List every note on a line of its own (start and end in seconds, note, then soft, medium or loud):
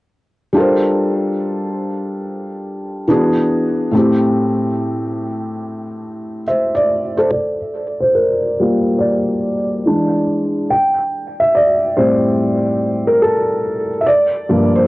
0.52 3.03 G3 medium
0.52 3.04 D4 medium
0.52 3.05 F4 medium
0.57 3.06 A4 medium
0.57 3.07 A#4 medium
0.57 3.07 C5 medium
3.08 3.93 E3 medium
3.08 3.93 B3 medium
3.08 3.94 D4 medium
3.08 3.94 F#4 medium
3.08 3.95 G#4 medium
3.92 6.42 A2 medium
3.92 6.43 A3 medium
3.92 6.44 C4 medium
3.97 6.45 E4 medium
3.97 6.45 G4 medium
6.48 6.74 C5 soft
6.48 6.73 E5 medium
6.75 7.15 D5 medium
7.17 7.58 A4 medium
7.17 7.57 C5 medium
7.31 8.03 D5 medium
8.00 8.16 C5 medium
8.15 9.02 A#4 medium
8.60 9.20 G3 soft
8.60 9.20 A#3 soft
8.60 9.21 F4 medium
8.99 10.22 D5 medium
9.86 10.66 E3 soft
9.86 10.66 G#3 soft
9.86 10.66 D4 medium
10.70 11.35 G5 medium
11.40 11.55 E5 medium
11.55 11.94 D5 medium
11.97 13.19 A2 soft
11.97 13.19 G3 soft
11.97 13.20 C4 medium
11.97 13.04 C5 medium
13.07 13.22 A#4 medium
13.22 13.88 A4 medium
14.01 14.07 E5 medium
14.06 14.73 D5 medium
14.49 14.87 G2 medium
14.49 14.87 F3 soft
14.49 14.87 A#3 medium
14.75 14.80 C5 medium